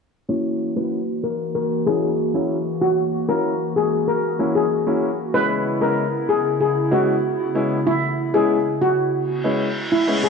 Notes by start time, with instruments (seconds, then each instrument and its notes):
0.29 analog synth pad E3 A#3 F#4, grand piano F#3 A#3 C#4 E4, steel pan C#5
0.76 grand piano F#3 A#3 C#4 E4, steel pan B4
1.24 steel pan A#4
1.55 steel pan A#4
1.86 grand piano F#3 A#3 C#4 E4, steel pan G#4
2.34 grand piano F#3 A#3 C#4 E4
2.81 steel pan F#4
3.28 grand piano F#3 A#3 C#4 E4, steel pan A#4
3.76 steel pan G#4
4.08 steel pan A#4
4.39 grand piano F#3 A#3 C#4 E4
4.55 steel pan G#4
4.87 grand piano F#3 A#3 C#4 E4
5.34 analog synth pad C#3 B3 E4, grand piano G#3 B3 C#4 E4, steel pan B4
5.81 grand piano G#3 B3 C#4 E4, steel pan A#4
6.29 steel pan G#4
6.61 steel pan G#4
6.91 grand piano G#3 B3 C#4 E4, steel pan F#4
7.55 grand piano G#3 B3 C#4 E4
7.87 steel pan E4
8.34 grand piano G#3 B3 C#4 E4, steel pan G#4
8.82 steel pan F#4
9.13 reverse cymbal
9.44 grand piano G#3 B3 C#4 E4
9.92 steel pan E4
10.07 grand piano G#3 B3 C#4 E4
10.24 steel pan G#4